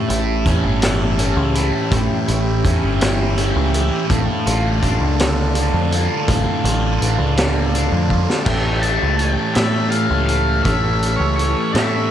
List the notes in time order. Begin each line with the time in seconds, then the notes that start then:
Already playing: A2 C#4 G4 E5 A5
0.08 A1 E4, closed hi-hat
0.45 E2 C#4, kick, closed hi-hat
0.64 G1
0.81 E3, snare, closed hi-hat
1.18 C#4, closed hi-hat
1.37 C#2
1.55 E4, closed hi-hat
1.91 A1 A2 G5, kick, closed hi-hat
2.27 A1 E4, closed hi-hat
2.64 E2 C#4, kick, closed hi-hat
2.83 G1
3.01 E3, snare, closed hi-hat
3.38 C#4, closed hi-hat
3.56 C#2
3.74 E4, closed hi-hat
4.10 A1 A2 D4 A4 F5 A5, kick, closed hi-hat
4.46 A1 F4, closed hi-hat
4.83 A1 D4, kick, closed hi-hat
5.01 C#2
5.19 D3, snare, closed hi-hat
5.55 D4, closed hi-hat
5.73 F2
5.91 F4, closed hi-hat
6.28 A1 A2, kick, closed hi-hat
6.64 A1 F4, closed hi-hat
6.99 A1 D4, closed hi-hat
7.20 C#2
7.36 D3, snare, closed hi-hat
7.74 D4, closed hi-hat
7.92 F2
8.10 F4, kick
8.30 snare
8.46 A1 A2 E3 A3 C#4 G4 A4 C#5 G5 A5, kick, crash
8.81 A5, closed hi-hat
9.02 C#2
9.17 G5, closed hi-hat
9.55 A2 E3 A3 E5, snare, closed hi-hat
9.90 F5, closed hi-hat
10.10 C#2
10.26 F5, closed hi-hat
10.63 A1 A2 E3 A3 E5, kick, closed hi-hat
11.02 closed hi-hat
11.16 C#2 C#5
11.36 C#5, closed hi-hat
11.72 A2 A3 E5, snare, closed hi-hat
11.77 A2 E3